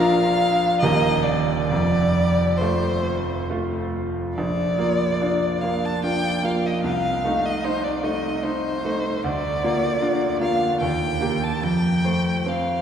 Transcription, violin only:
0.00 0.80 F5 loud
0.80 1.24 D#5 medium
1.23 1.67 D5 medium
1.67 2.59 D5 medium
2.58 3.47 C5 medium
4.35 5.63 D5 medium
5.61 5.87 F5 medium
5.85 6.04 A5 medium
6.05 6.46 G5 medium
6.45 6.67 F5 medium
6.66 6.82 D#5 medium
6.83 7.47 F5 medium
7.46 7.66 D#5 medium
7.65 7.86 C5 medium
7.84 8.06 D5 medium
8.05 8.46 D#5 medium
8.44 9.25 C5 medium
9.23 10.41 D5 medium
10.41 10.80 F5 medium
10.81 11.45 G5 medium
11.44 11.66 A5 medium
11.64 12.50 G5 medium
12.48 12.82 F5 medium

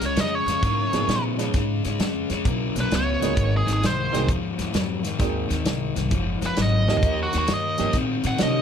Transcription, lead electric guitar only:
0.06 0.20 C#5 medium
0.20 0.35 D#5 medium
0.35 1.23 C#5 medium
2.80 2.94 B4 loud
2.96 3.53 C#5 medium
3.57 3.70 G#4 medium
3.73 3.85 G#4 medium
3.86 4.29 C5 medium
6.46 6.59 B4 medium
6.62 7.19 D#5 medium
7.23 7.35 F#4 medium
7.38 7.50 F#4 medium
7.54 7.95 D#5 medium
8.27 8.43 F#5 medium
8.43 8.62 D#5 medium

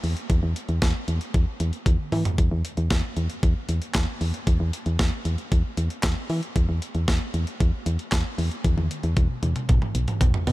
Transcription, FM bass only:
0.04 0.15 E2 loud
0.30 0.41 E2 loud
0.43 0.54 E2 loud
0.69 0.80 E2 loud
0.82 0.93 E2 loud
1.08 1.19 E2 loud
1.34 1.46 E2 loud
1.60 1.72 E2 loud
1.86 1.97 E2 loud
2.12 2.24 E3 loud
2.38 2.50 E2 loud
2.51 2.63 E2 loud
2.77 2.89 E2 loud
2.91 3.02 E2 loud
3.17 3.28 E2 loud
3.43 3.54 E2 loud
3.69 3.80 E2 loud
3.95 4.06 E2 loud
4.21 4.32 E2 loud
4.47 4.58 E2 loud
4.60 4.71 E2 loud
4.86 4.98 E2 loud
4.99 5.11 E2 loud
5.25 5.37 E2 loud
5.52 5.63 E2 loud
5.77 5.89 E2 loud
6.03 6.15 E2 loud
6.30 6.41 E3 loud
6.56 6.67 E2 loud
6.69 6.80 E2 loud
6.95 7.06 E2 loud
7.08 7.19 E2 loud
7.34 7.45 E2 loud
7.60 7.72 E2 loud
7.86 7.98 E2 loud
8.12 8.24 E2 loud
8.38 8.50 E2 loud
8.64 8.76 E2 loud
8.78 8.89 E2 loud
9.04 9.15 E2 loud
9.17 9.28 E2 loud
9.43 9.54 E2 loud
9.69 9.80 B1 loud
9.95 10.06 B1 loud
10.21 10.32 B1 loud
10.47 10.52 B2 loud

